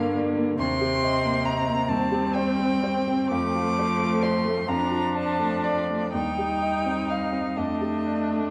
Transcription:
Already playing: G2 D3 A#3 G4 D5 F5
0.15 D5
0.37 A#3
0.57 D#2 C3 C4 C6
0.81 G4
1.03 D#5
1.25 A#3
1.46 D#5 A#5
1.68 A#3
1.88 D#2 G3 C4 A5
2.12 G4
2.34 C5 G5
2.59 C4
2.84 C5
3.08 C4
3.30 F2 F3 A3 D6
3.55 F4
3.79 C5
4.00 A3
4.22 C5 C6
4.44 A3
4.66 F2 F3 D4 A#5
4.91 F4
5.15 D5 A5
5.39 A3
5.64 D5
5.89 A3
6.12 D#2 G3 D#4 G5
6.38 G4
6.62 D#5
6.86 C4
7.09 D#5 F5
7.33 C4
7.57 F2 A3 D4 D#5
7.81 G4
8.06 D5
8.31 A3

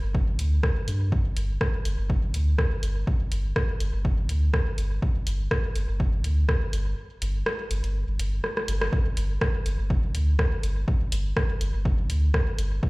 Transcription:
0.03 G1
0.15 kick
0.28 G1
0.39 D2, closed hi-hat
0.63 kick, cross-stick
0.88 G2, closed hi-hat
1.12 kick
1.37 G1, closed hi-hat
1.61 kick, cross-stick
1.85 G1, closed hi-hat
1.99 G1
2.10 kick
2.23 G1
2.34 D2, closed hi-hat
2.58 kick, cross-stick
2.83 G1, closed hi-hat
3.07 kick
3.32 G1, closed hi-hat
3.56 kick, cross-stick
3.80 G1, closed hi-hat
3.94 G1
4.05 kick
4.18 G1
4.29 D2, closed hi-hat
4.54 kick, cross-stick
4.78 G1, closed hi-hat
5.02 kick
5.27 G1, closed hi-hat
5.51 kick, cross-stick
5.75 G1, closed hi-hat
5.89 G1
6.00 kick
6.13 G1
6.24 D2, closed hi-hat
6.49 kick, cross-stick
6.73 G1, closed hi-hat
7.22 G1, closed hi-hat
7.46 cross-stick
7.71 G1, closed hi-hat
7.84 G1, closed hi-hat
8.08 G1
8.19 G1, closed hi-hat
8.44 cross-stick
8.57 cross-stick
8.68 G1, closed hi-hat
8.81 cross-stick
8.93 kick
9.17 G1, closed hi-hat
9.41 kick, cross-stick
9.66 G1, closed hi-hat
9.79 G1
9.90 kick
10.03 G1
10.15 D2, closed hi-hat
10.39 kick, cross-stick
10.63 G1, closed hi-hat
10.88 kick
11.12 G1, closed hi-hat
11.37 kick, cross-stick
11.61 G1, closed hi-hat
11.74 G1
11.85 kick
11.98 G1
12.10 D2, closed hi-hat
12.34 kick, cross-stick
12.58 G1, closed hi-hat
12.83 kick

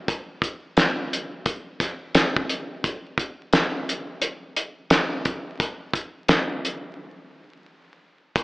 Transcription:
0.08 kick, closed hi-hat
0.42 kick, closed hi-hat
0.77 snare, closed hi-hat
1.13 closed hi-hat
1.46 kick, closed hi-hat
1.80 kick, snare, closed hi-hat
2.15 snare, closed hi-hat
2.36 kick
2.49 closed hi-hat
2.84 kick, closed hi-hat
3.18 kick, closed hi-hat
3.53 snare, closed hi-hat
3.89 closed hi-hat
4.22 closed hi-hat
4.57 closed hi-hat
4.90 snare, closed hi-hat
5.25 kick, closed hi-hat
5.60 kick, closed hi-hat
5.93 kick, closed hi-hat
6.28 snare, closed hi-hat
6.65 closed hi-hat
8.36 kick, closed hi-hat

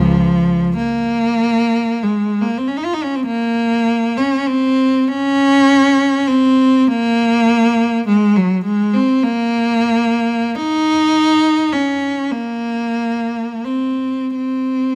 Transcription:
Already playing: C#2 F3
0.76 A#3
2.03 G#3
2.42 A#3
2.58 C4
2.68 C#4
2.77 D#4
2.85 F4
2.94 D#4
3.03 C#4
3.15 C4
3.26 A#3
4.18 C#4
4.47 C4
5.08 C#4
6.28 C4
6.87 A#3
8.07 G#3
8.36 F#3
8.65 G#3
8.94 C4
9.23 A#3
10.54 D#4
11.73 C#4
12.31 A#3
13.64 C4
14.35 C4

